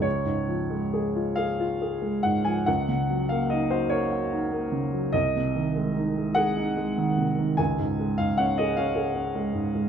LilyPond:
<<
  \new Staff \with { instrumentName = "Grand piano" } { \time 12/8 \key des \major \tempo 4. = 49 des''4. f''4 ges''16 aes''16 ges''8. f''16 ees''16 c''16 des''4. | ees''4. ges''4. aes''8. f''16 ges''16 ees''16 f''4. | }
  \new Staff \with { instrumentName = "Grand piano" } { \clef bass \time 12/8 \key des \major des,16 aes,16 f16 aes16 aes'16 f'16 aes'16 f'16 aes'16 aes16 aes,16 f16 des,16 des16 ges16 bes16 ees'16 ges'16 bes'16 ges'16 ees'16 bes16 des16 ges16 | c,16 c16 ees16 aes16 ees'16 aes16 aes'16 ees'16 aes16 ees16 c16 ees16 des,16 aes,16 aes16 aes,16 des'16 aes'16 des'16 aes'16 des'16 aes16 aes,16 aes16 | }
>>